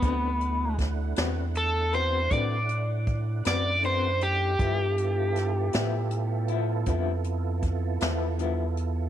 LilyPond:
<<
  \new Staff \with { instrumentName = "Overdriven electric guitar" } { \time 12/8 \key d \mixolydian \tempo 4. = 53 b4 r4 a'8 c''8 d''4. d''8 c''8 g'8~ | g'2~ g'8 r2. r8 | }
  \new Staff \with { instrumentName = "Tonewheel organ" } { \time 12/8 \key d \mixolydian <a d' e' fis''>1. | <b e' f' a'>1. | }
  \new Staff \with { instrumentName = "Clean electric guitar" } { \time 12/8 \key d \mixolydian <d c' fis' b'>8 r4 <c' fis' b'>8 r8 <c' fis' b'>8 <d c' fis' b'>8 r4 <c' fis' b'>8 <d c' fis' b'>8 r8 | <g, f b e'>8 r4 <f b e'>8 r8 <f b e'>8 <g, f b e'>8 r4 <f b e'>8 <g, f b e'>8 r8 | }
  \new Staff \with { instrumentName = "Analog synth bass" } { \clef bass \time 12/8 \key d \mixolydian d,4. e,4. a,4. fis,4. | g,4. a,4. f,4. e,4. | }
  \new DrumStaff \with { instrumentName = "Drums" } \drummode { \time 12/8 <hh bd>8 hh8 <hh bd sn>8 <hh sn>8 hh8 hh8 <hh bd>8 hh8 <hh bd>8 <hh sn>8 hh8 hh8 | <hh bd>8 hh8 <hh sn>8 <hh sn>8 hh8 hh8 <hh bd>8 hh8 <hh bd>8 <hh sn>8 hh8 hh8 | }
>>